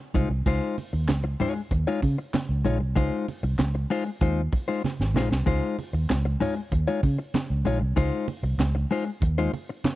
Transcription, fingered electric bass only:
0.15 C2
0.29 C2
0.46 C#2
0.93 D#2
1.09 C#2
1.71 D#2
2.02 C#3
2.49 C#2
2.65 A#1
2.80 C2
2.96 C#2
3.43 C2
3.59 C#2
4.21 D#2
5.00 G#1
5.15 A#1
5.31 C2
5.47 C#2
5.93 D#2
6.10 C#2
6.72 D#2
7.03 C#3
7.50 C#2
7.66 A#1
7.81 C2
7.97 C#2
8.43 C2
8.58 C#2
9.22 D#2

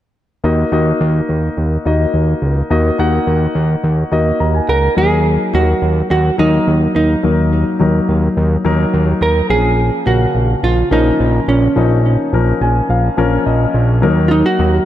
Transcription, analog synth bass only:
0.44 D#2
0.72 D#2
1.01 D#2
1.29 D#2
1.57 D#2
1.86 D#2
2.14 D#2
2.42 C#2
2.71 D#2
2.99 D#2
3.27 D#2
3.55 D#2
3.84 D#2
4.12 D#2
4.40 D#2
4.69 C#2
4.97 D#2
5.54 D#2
5.82 D#2
6.11 D#2
6.39 D#2
6.67 D#2
6.95 D#2
7.24 D#2
7.80 D#2
8.09 D#2
8.37 D#2
8.65 D#2
8.94 D#2
9.21 D#2
9.50 A#1
10.07 A#1
10.35 A#1
10.63 A#1
10.91 A#1
11.20 A#1
11.48 A#1
11.76 A#1
12.33 A#1
12.61 A#1
12.89 A#1
13.18 A#1
13.46 A#1
13.74 A#1
14.03 D#2
14.59 D#2

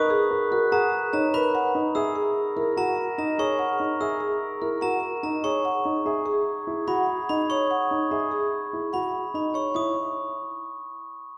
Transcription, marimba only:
Already playing: D#5
0.10 G#4
0.52 A#4
0.72 F#5
1.13 C#5
1.34 B4
1.55 F#5
1.96 E5
2.15 G#4
2.57 A#4
2.78 F#5
3.18 D#5
3.39 C#5
3.59 F#5
4.01 E5
4.20 G#4
4.62 A#4
4.81 F#5
5.24 D#5
5.44 C#5
5.65 F#5
6.06 E5
6.26 G#4
6.88 F#5
7.30 D#5
7.51 C#5
7.71 F#5
8.11 E5
8.31 G#4
8.93 F#5
9.34 D#5
9.54 C#5
9.74 C#5

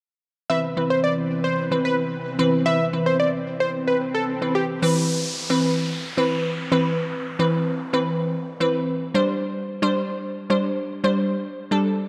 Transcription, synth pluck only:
0.50 E3 C4 B4
0.77 E3 C4 B4
1.71 E3 C4 B4
2.39 E3 C4 B4
2.66 E3 C4 B4
2.93 E3 C4 B4
4.42 E3 C4 B4
4.82 E3 C4 B4
5.50 E3 C4 B4
6.17 E3 C4 B4
6.71 E3 C4 B4
7.39 E3 C4 B4
7.93 E3 C4 B4
8.60 E3 C4 B4
9.14 G3 D4 C5
9.82 G3 D4 C5
10.50 G3 D4 C5
11.04 G3 D4 C5
11.71 G3 D4 A4

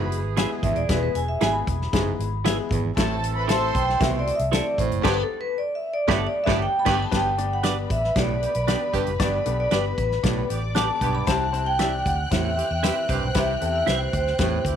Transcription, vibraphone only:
0.63 E5
0.76 D5
0.89 B4
1.03 B4
1.15 G#5
1.28 E5
1.41 G#5
1.52 B5
3.49 A5
3.75 G5
4.01 E5
4.19 D5
4.35 E5
4.53 D5
4.79 C5
5.07 B4
5.23 A4
5.41 B4
5.58 D5
5.75 E5
5.93 D5
6.10 E5
6.27 D5
6.44 E5
6.62 G5
6.79 B5
7.02 A5
7.14 G5
7.53 F#5
7.91 E5
8.18 D5
8.56 D5
8.95 B4
9.22 D5
9.60 D5
9.73 B4
9.98 B4
10.75 A5
11.15 B5
11.27 A5
11.66 G5
12.06 F#5
12.32 E5
12.71 E5
13.10 C5
13.38 E5
13.75 E5
13.89 C5
14.14 C5

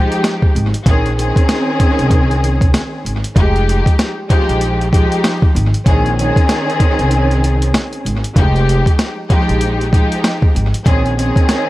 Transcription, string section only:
Already playing: F3 G#3 D#4 G4
0.86 D#3 C4 C#4 G#4
1.17 D#3 C4 C#4 G#4
3.36 F3 G#3 D#4 G4
4.29 F3 G#3 D#4 G4
4.92 F3 G#3 D#4 G4
5.86 D#3 C4 C#4 G#4
6.17 D#3 C4 C#4 G#4
8.36 F3 G#3 D#4 G4
9.29 F3 G#3 D#4 G4
9.92 F3 G#3 D#4 G4
10.86 D#3 C4 C#4 G#4
11.17 D#3 C4 C#4 G#4

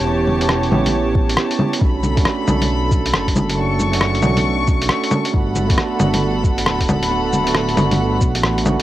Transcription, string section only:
Already playing: G4 C#5 A5
1.83 A4 B5
3.58 C#6
5.34 A4 F#5 B5

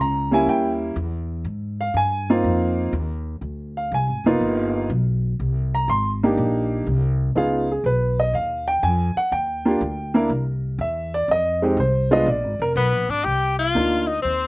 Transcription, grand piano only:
0.01 A#5
0.31 G3 A#3 C#4 E4 G#5
0.49 G5
1.81 F5
1.97 G#5
2.30 A#3 C4 D#4 F4
3.77 F5
3.94 G#5
4.26 A#3 B3 D#4 F4
5.75 A#5
5.90 C6
6.23 A#3 D4 D#4 G4
7.35 B3 D#4 F4 G#4 F5
7.72 G#4
7.86 B4
8.20 D#5
8.35 F5
8.68 G5
8.83 G#5
9.17 F#5
9.32 G5
9.65 A#3 D4 F4 G4
10.14 A#3 D4 E4 A#4
10.81 E5
11.14 D5
11.31 D#5
11.62 G#3 C4 D#4 G4
11.80 C5
12.11 G#3 B3 D4 F4 D#5
12.28 D5
12.62 A#4
13.75 A#3 D4 D#4 F4

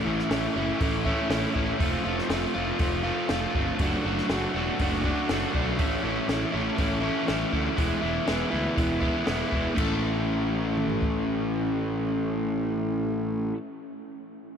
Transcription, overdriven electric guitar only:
Already playing: A2 E3
0.05 A3 C#4 E4
0.30 E3 A3 C#4 E4
0.56 A2 E3 A3 C#4 E4
0.79 E3 A3 C#4 E4
1.05 A2 E3 A3 C#4 E4
1.28 E3 A3 C#4 E4
1.54 A3 C#4 E4
1.79 F3 A3 C4 F4
2.04 A3 C4 F4
2.29 F3 A3 C4 F4
2.54 F3 A3 C4 F4
2.79 F3 A3 C4 F4
3.04 F3 A3 C4 F4
3.28 F3 A3 C4 F4
3.55 A3 C4 F4
3.80 F#3 A3 D4 F#4
4.06 A3 D4 F#4
4.30 F#3 A3 D4 F#4
4.54 F#3 A3 D4 F#4
4.80 F#3 A3 D4 F#4
5.04 F#3 A3 D4 F#4
5.30 F#3 A3 D4 F#4
5.53 A3 D4 F#4
5.78 A2 E3 A3 C#4 E4
6.03 A3 C#4 E4
6.27 E3 A3 C#4 E4
6.51 A2 E3 A3 C#4 E4
6.76 E3 A3 C#4 E4
7.00 A2 E3 A3 C#4 E4
7.25 E3 A3 C#4 E4
7.51 A3 C#4 E4
7.76 E3 G#3 B3 E4
8.01 G#3 B3 E4
8.26 E3 G#3 B3 E4
8.50 E3 G#3 B3 E4
8.75 E3 G#3 B3 E4
9.00 E3 G#3 B3 E4
9.24 E3 G#3 B3 E4
9.48 G#3 B3 E4
9.75 A3 C#4 E4
9.79 A4

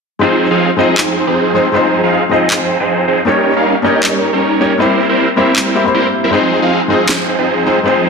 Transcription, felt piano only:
0.19 G#3 C4 D#4 F4 C5
0.76 G#3 C4 D#4 F4
0.81 C5
1.54 G#3 C4 D#4 F4 C5
1.72 G#3 C4 D#4 F4
1.76 C5
2.29 G#3 C4 D#4 F4 C5
3.25 A#3 C#4 D#4 G4
3.29 C#5
3.82 A#3 C#4 D#4 G4
3.86 C#5
4.60 A#3 C#4 D#4 G4 C#5
4.78 A#3 C4 E4 G4
4.82 C5
5.36 A#3 C4 E4 G4 C5
5.74 A#3 C4 E4 G4 E5
5.84 A#3 C4 E4 G4
5.88 C5
6.31 G#3 C4 D#4 F4
6.35 C5
6.88 G#3 C4 D#4 F4
6.92 C5
7.65 G#3 C4 D#4 F4 C5
7.83 G#3 C4 D#4 F4
7.87 C5

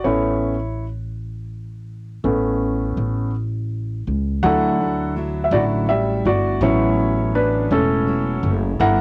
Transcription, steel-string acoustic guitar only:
4.43 D3 F#3 A3 D4 E4
4.80 A3 D4 E4
5.16 F#3 A3 D4 E4
5.53 D3 F#3 A3 D4 E4
5.89 F#3 D4 E4
6.25 A3 D4 E4
6.61 A2 F#3 A3 C#4 E4
6.98 A3 C#4 E4
7.34 F#3 A3 C#4 E4
7.71 A2 F#3 A3 C#4 E4
8.07 F#3 A3 C#4 E4
8.43 A3 C#4 E4
8.81 G3 A#3 D4 E4

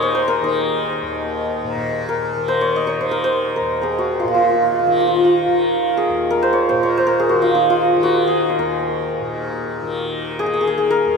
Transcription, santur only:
Already playing: G#4 A#4 D#5
0.02 C#5
0.15 C5
0.28 A#4
0.44 D#4
2.09 A#4
2.48 C5
2.61 C#5
2.76 D#5
2.87 C#5
3.01 C5
3.11 A#4
3.24 C5
3.56 A#4
3.82 G#4 A#4
3.99 F#4
4.20 F4
4.28 F4
4.35 F4
4.43 F4
4.49 F4
4.56 F4
4.64 F4
4.72 F4
4.79 F4
4.87 F4
4.92 F4
5.00 F4
5.07 F4
5.16 F4
5.25 F4
5.97 G#4
6.31 A#4
6.43 C5
6.53 C#5
6.69 C5
6.83 C#5
6.97 C5
7.07 A#4
7.20 G#4
7.29 F#4
7.42 F4
7.55 D#4
7.70 F4
8.03 F#4
8.28 G#4
8.50 C5
8.59 A#4
10.39 G#4
10.46 G#4
10.54 G#4
10.61 G#4
10.67 G#4
10.78 G#4
10.90 A#4

